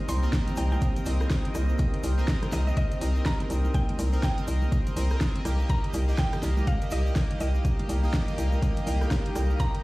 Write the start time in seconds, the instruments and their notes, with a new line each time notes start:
Already playing: ambient pad A#3 D#4 C5, analog polysynth C4 A#4 D#5, analog synth pad C4 G4 D#5
0.09 fm bass C2, synth pluck C6, open hi-hat, shaker
0.23 analog polysynth C4 A#4 D#5, shaker
0.32 kick, snare, closed hi-hat, muted conga, shaker
0.48 closed hi-hat, low conga, shaker
0.56 fm bass C2, synth pluck G5, open hi-hat, muted conga, shaker
0.71 synth pluck G5, high conga, shaker
0.81 kick, closed hi-hat, shaker
0.96 closed hi-hat, muted conga, low conga, shaker
1.05 fm bass C2, analog polysynth C4 A#4 D#5, open hi-hat, low conga, shaker
1.20 cross-stick, muted conga, shaker
1.30 kick, snare, closed hi-hat, shaker
1.45 closed hi-hat
1.54 fm bass C2, cross-stick, open hi-hat, muted conga, shaker
1.69 shaker
1.78 ambient pad A#4, kick, closed hi-hat, muted conga, shaker
1.94 closed hi-hat
2.03 fm bass C2, open hi-hat, shaker
2.18 analog polysynth C4 A#4 D#5, muted conga, shaker
2.28 kick, snare, closed hi-hat, shaker
2.42 cross-stick, closed hi-hat, muted conga, low conga, shaker
2.52 fm bass C2, synth pluck D#5, snare, open hi-hat, shaker
2.66 synth pluck D#5, high conga, shaker
2.77 synth pluck D#5, kick, closed hi-hat, muted conga, shaker
2.92 closed hi-hat, shaker
3.00 fm bass C2, analog polysynth C4 A#4 D#5, open hi-hat, muted conga, shaker
3.16 shaker
3.25 synth pluck A#5, kick, snare, closed hi-hat, shaker
3.40 closed hi-hat, muted conga
3.50 fm bass C2, open hi-hat, shaker
3.65 muted conga, shaker
3.74 synth pluck G5, kick, closed hi-hat, shaker
3.89 closed hi-hat, high conga
3.99 fm bass C2, open hi-hat, muted conga, shaker
4.13 analog polysynth C4 A#4 D#5, closed hi-hat, shaker
4.23 synth pluck G5, kick, snare, closed hi-hat, muted conga, shaker
4.38 closed hi-hat, low conga, shaker
4.48 fm bass C2, open hi-hat, shaker
4.62 muted conga, high conga, shaker
4.72 kick, closed hi-hat, shaker
4.86 closed hi-hat, muted conga, low conga, shaker
4.96 fm bass C2, analog polysynth C4 A#4 D#5, open hi-hat, low conga, shaker
5.10 cross-stick, shaker
5.21 kick, snare, closed hi-hat, muted conga, shaker
5.36 closed hi-hat
5.45 fm bass C2, analog polysynth A#3 G4 D#5, cross-stick, open hi-hat, muted conga, shaker
5.60 shaker
5.69 ambient pad G3 D#4, analog synth pad D#4, synth pluck A#5, kick, closed hi-hat, muted conga, shaker
5.84 closed hi-hat
5.92 fm bass C2, analog synth pad F5, open hi-hat, muted conga, shaker
5.97 analog synth pad A#4
6.08 analog polysynth A#3 G4 D#5, shaker
6.18 synth pluck G5, kick, snare, closed hi-hat, shaker
6.33 cross-stick, closed hi-hat, muted conga, low conga, shaker
6.43 fm bass C2, snare, open hi-hat, shaker
6.57 muted conga, high conga, shaker
6.67 synth pluck F5, kick, closed hi-hat, shaker
6.82 closed hi-hat, shaker
6.90 fm bass C2, analog polysynth A#3 G4 D#5, synth pluck D#5, analog synth pad G5, open hi-hat, muted conga, shaker
7.07 shaker
7.16 kick, snare, closed hi-hat, muted conga, shaker
7.31 closed hi-hat
7.40 fm bass C2, synth pluck D#5, open hi-hat, shaker
7.54 muted conga, shaker
7.65 kick, closed hi-hat, shaker
7.79 closed hi-hat, muted conga, high conga
7.89 fm bass C2, open hi-hat, shaker
8.03 analog polysynth A#3 G4 D#5, shaker
8.13 kick, snare, closed hi-hat, muted conga, shaker
8.28 closed hi-hat, low conga, shaker
8.38 fm bass C2, open hi-hat, muted conga, shaker
8.52 high conga, shaker
8.62 kick, closed hi-hat, shaker
8.77 closed hi-hat, muted conga, low conga, shaker
8.86 fm bass C2, analog polysynth A#3 G4 D#5, open hi-hat, low conga, shaker
9.01 cross-stick, muted conga, shaker
9.11 kick, snare, closed hi-hat, shaker
9.26 closed hi-hat
9.36 fm bass C2, cross-stick, open hi-hat, muted conga, shaker
9.50 shaker
9.60 ambient pad C5, synth pluck A#5, kick, closed hi-hat, muted conga, shaker
9.75 closed hi-hat